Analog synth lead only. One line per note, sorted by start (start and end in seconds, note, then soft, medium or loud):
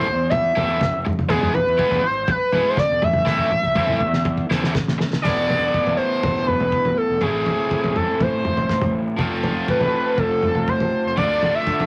0.00 0.26 C5 loud
0.30 1.00 E5 loud
1.28 1.55 G#4 loud
1.54 2.08 B4 medium
2.06 2.30 C5 medium
2.31 2.71 B4 loud
2.69 2.80 C5 loud
2.79 3.05 D5 loud
3.04 4.76 E5 loud
5.22 5.93 D5 loud
5.97 6.49 C5 loud
6.47 6.99 B4 loud
6.97 7.24 A4 medium
7.22 7.98 G#4 loud
7.96 8.21 A4 medium
8.22 8.92 C5 medium
9.70 10.20 B4 medium
10.19 10.70 A4 loud
10.69 11.05 C5 loud
11.07 11.12 C5 medium
11.17 11.56 D5 loud
11.55 11.86 E5 loud